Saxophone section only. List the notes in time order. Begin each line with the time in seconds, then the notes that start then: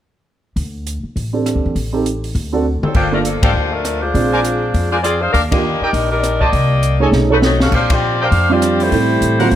2.84 F#3 C4 D4 A4
2.96 A3 D4 F4 C5
3.13 F3 A3 D4 A#4
3.26 F3 A#3 D4 A4
3.43 F3 A#3 D4 G4
3.72 F3 A3 D4 A#4
4.01 G#3 D4 F4 C5
4.90 G#3 D4 F4 C5
5.03 C4 F4 G#4 D5
5.20 D4 G#4 C5 F5
5.32 D4 G4 A#4 F5
5.51 A#3 D4 G4 D#5
5.81 G3 D4 D#4 A#4
6.11 G3 D4 D#4 A#4
6.41 A#3 G4 D5 D#5
7.32 A3 D#4 F#4 B4
7.43 A3 D#4 F#4 C#5
7.61 C#4 F#4 A4 F5
7.74 D4 G4 C5 F5
7.92 C4 F4 G4 D5
8.23 D4 G4 C5 F5
8.51 C4 F4 G4 D5
8.82 A3 E4 G4 C5